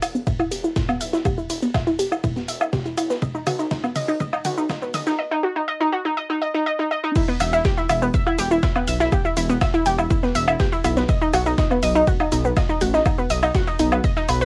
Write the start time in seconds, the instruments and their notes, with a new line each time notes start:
0.02 detuned saw bass E1, synth arpeggio sound E4, open hi-hat, low woodblock, shaker
0.15 synth arpeggio sound B3, shaker
0.27 synth arpeggio sound E5, kick, mid tom, ride, shaker
0.39 synth arpeggio sound E4, low woodblock, shaker
0.51 detuned saw bass E1, synth arpeggio sound G4, open hi-hat, ride, shaker
0.64 synth arpeggio sound E4, shaker
0.76 synth arpeggio sound E4, kick, snare, mid tom, ride, shaker
0.89 synth arpeggio sound B3, low woodblock, shaker
1.01 detuned saw bass B1, synth arpeggio sound E5, open hi-hat, ride, shaker
1.13 synth arpeggio sound E4, snare, shaker
1.25 synth arpeggio sound G4, kick, mid tom, ride, low woodblock, shaker
1.38 synth arpeggio sound E4, shaker
1.50 detuned saw bass E1, synth arpeggio sound E4, open hi-hat, ride, shaker
1.62 synth arpeggio sound B3, ride, shaker
1.74 synth arpeggio sound E5, kick, snare, mid tom, ride, low woodblock, shaker
1.87 synth arpeggio sound E4, ride, shaker
1.99 detuned saw bass E1, synth arpeggio sound G4, open hi-hat, ride, shaker
2.12 synth arpeggio sound E4, low woodblock, shaker
2.24 synth arpeggio sound E4, kick, mid tom, ride, shaker
2.36 synth arpeggio sound B3, snare, shaker
2.48 detuned saw bass E1, synth arpeggio sound E5, open hi-hat, ride, shaker
2.61 synth arpeggio sound E4, low woodblock, shaker
2.73 synth arpeggio sound G4, kick, snare, mid tom, ride, shaker
2.85 synth arpeggio sound E4, ride, shaker
2.97 detuned saw bass B1, synth arpeggio sound E4, open hi-hat, ride, low woodblock, shaker
3.10 synth arpeggio sound B3, snare, shaker
3.22 synth arpeggio sound D#5, kick, mid tom, ride, shaker
3.35 synth arpeggio sound D#4, shaker
3.46 detuned saw bass B1, synth arpeggio sound F#4, open hi-hat, mid tom, ride, low woodblock, shaker
3.59 synth arpeggio sound D#4, ride, shaker
3.71 synth arpeggio sound D#4, kick, snare, mid tom, ride, shaker
3.84 synth arpeggio sound B3, low woodblock, shaker
3.96 detuned saw bass B1, synth arpeggio sound D#5, open hi-hat, mid tom, shaker
4.08 synth arpeggio sound D#4, shaker
4.20 synth arpeggio sound D#5, kick, mid tom, ride, shaker
4.33 synth arpeggio sound D#4, low woodblock, shaker
4.45 detuned saw bass B1, synth arpeggio sound F#4, open hi-hat, mid tom, ride, shaker
4.58 synth arpeggio sound D#4, shaker
4.69 synth arpeggio sound D#4, kick, snare, mid tom, ride, low woodblock, shaker
4.82 synth arpeggio sound B3, shaker
4.94 detuned saw bass A1, synth arpeggio sound D#5, open hi-hat, mid tom, ride, shaker
5.07 synth arpeggio sound D#4, snare, shaker
5.19 synth arpeggio sound D#5
5.31 synth arpeggio sound D#4
5.43 synth arpeggio sound F#4
5.56 synth arpeggio sound D#4
5.68 synth arpeggio sound D#5
5.81 synth arpeggio sound D#4
5.92 synth arpeggio sound F#4
6.05 synth arpeggio sound D#4
6.17 synth arpeggio sound D#5
6.30 synth arpeggio sound D#4
6.42 synth arpeggio sound D#5
6.54 synth arpeggio sound D#4
6.66 synth arpeggio sound D#5
6.79 synth arpeggio sound D#4
6.91 synth arpeggio sound D#5
7.04 synth arpeggio sound D#4
7.15 synth arpeggio sound E4 E5, kick, crash, ride, shaker
7.28 synth arpeggio sound B3 B4, shaker
7.40 detuned saw bass E1, synth arpeggio sound E5 E6, open hi-hat, ride, low woodblock, shaker
7.53 synth arpeggio sound E4 E5, ride, shaker
7.65 synth arpeggio sound G4 G5, kick, snare, ride, shaker
7.77 synth arpeggio sound E4 E5, shaker
7.89 detuned saw bass E1, synth arpeggio sound E4 E5, open hi-hat, low woodblock, shaker
8.02 synth arpeggio sound B3 B4, shaker
8.14 synth arpeggio sound E5 E6, kick, ride, shaker
8.27 synth arpeggio sound E4 E5, low woodblock, shaker
8.38 detuned saw bass E1, synth arpeggio sound G4 G5, open hi-hat, ride, shaker
8.51 synth arpeggio sound E4 E5, shaker
8.63 synth arpeggio sound E4 E5, kick, snare, ride, shaker
8.76 synth arpeggio sound B3 B4, low woodblock, shaker
8.88 detuned saw bass B1, synth arpeggio sound E5 E6, open hi-hat, ride, shaker
9.00 synth arpeggio sound E4 E5, snare, shaker
9.12 synth arpeggio sound G4 G5, kick, ride, low woodblock, shaker
9.25 synth arpeggio sound E4 E5, shaker
9.37 detuned saw bass E1, synth arpeggio sound E4 E5, open hi-hat, ride, shaker
9.50 synth arpeggio sound B3 B4, ride, shaker
9.61 synth arpeggio sound E5 E6, kick, snare, ride, low woodblock, shaker
9.74 synth arpeggio sound E4 E5, ride, shaker
9.86 detuned saw bass E1, synth arpeggio sound G4 G5, open hi-hat, ride, shaker
9.99 synth arpeggio sound E4 E5, low woodblock, shaker
10.11 synth arpeggio sound E4 E5, kick, ride, shaker
10.23 synth arpeggio sound B3 B4, snare, shaker
10.35 detuned saw bass E1, synth arpeggio sound E5 E6, open hi-hat, ride, shaker
10.48 synth arpeggio sound E4 E5, low woodblock, shaker
10.60 synth arpeggio sound G4 G5, kick, snare, ride, shaker
10.72 synth arpeggio sound E4 E5, ride, shaker
10.84 detuned saw bass B1, synth arpeggio sound E4 E5, open hi-hat, ride, low woodblock, shaker
10.97 synth arpeggio sound B3 B4, snare, shaker
11.09 synth arpeggio sound D#5 D#6, kick, ride, shaker
11.22 synth arpeggio sound D#4 D#5, shaker
11.34 detuned saw bass B1, synth arpeggio sound F#4 F#5, open hi-hat, ride, low woodblock, shaker
11.46 synth arpeggio sound D#4 D#5, ride, shaker
11.58 synth arpeggio sound D#4 D#5, kick, snare, ride, shaker
11.71 synth arpeggio sound B3 B4, low woodblock, shaker
11.83 detuned saw bass B1, synth arpeggio sound D#5 D#6, open hi-hat, shaker
11.95 synth arpeggio sound D#4 D#5, shaker
12.07 synth arpeggio sound F#4 F#5, kick, ride, shaker
12.20 synth arpeggio sound D#4 D#5, low woodblock, shaker
12.32 detuned saw bass B1, synth arpeggio sound D#4 D#5, open hi-hat, ride, shaker
12.45 synth arpeggio sound B3 B4, shaker
12.56 synth arpeggio sound D#5 D#6, kick, snare, ride, low woodblock, shaker
12.69 synth arpeggio sound D#4 D#5, shaker
12.81 detuned saw bass A1, synth arpeggio sound F#4 F#5, open hi-hat, ride, shaker
12.94 synth arpeggio sound D#4 D#5, snare, shaker
13.06 synth arpeggio sound D#4 D#5, kick, ride, low woodblock, shaker
13.18 synth arpeggio sound B3 B4, shaker
13.30 detuned saw bass B1, synth arpeggio sound D#5 D#6, open hi-hat, ride, shaker
13.43 synth arpeggio sound D#4 D#5, ride, low woodblock, shaker
13.55 synth arpeggio sound F#4 F#5, kick, snare, ride, shaker
13.67 synth arpeggio sound D#4 D#5, ride, shaker
13.79 detuned saw bass B1, synth arpeggio sound D#4 D#5, open hi-hat, ride, shaker
13.92 synth arpeggio sound B3 B4, low woodblock, shaker
14.04 synth arpeggio sound D#5 D#6, kick, ride, shaker
14.17 synth arpeggio sound D#4 D#5, snare, shaker
14.29 detuned saw bass B1, synth arpeggio sound B4 B5, open hi-hat, ride, low woodblock, shaker
14.41 synth arpeggio sound B4 B5, shaker